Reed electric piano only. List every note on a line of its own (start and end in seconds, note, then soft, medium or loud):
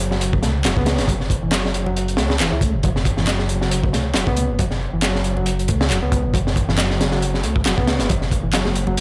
0.00 0.10 F#3 medium
0.11 0.42 F#3 medium
0.43 0.55 A3 medium
0.65 0.73 F#3 medium
0.77 1.08 B3 medium
1.09 1.13 F#3 medium
1.43 1.52 E3 medium
1.52 1.85 F#3 medium
1.86 2.17 F#3 medium
2.18 2.29 A3 medium
2.40 2.52 E3 medium
2.52 2.61 E4 medium
2.62 2.73 A3 medium
2.84 2.89 F#3 medium
3.18 3.27 E3 medium
3.28 3.61 F#3 medium
3.62 3.92 F#3 medium
3.93 4.05 A3 medium
4.15 4.23 F#3 medium
4.28 4.58 B3 loud
4.59 4.64 F#3 medium
4.93 5.02 E3 medium
5.03 5.36 F#3 medium
5.37 5.68 F#3 medium
5.69 5.80 A3 medium
5.91 5.98 F#3 medium
6.03 6.33 B3 medium
6.35 6.39 F#3 medium
6.69 6.78 E3 medium
6.78 7.11 F#3 medium
7.12 7.43 F#3 medium
7.44 7.55 A3 medium
7.65 7.73 F#3 loud
7.77 8.08 B3 loud
8.09 8.14 F#3 medium
8.43 8.53 E3 medium
8.53 8.86 F#3 medium
8.87 9.00 F#3 medium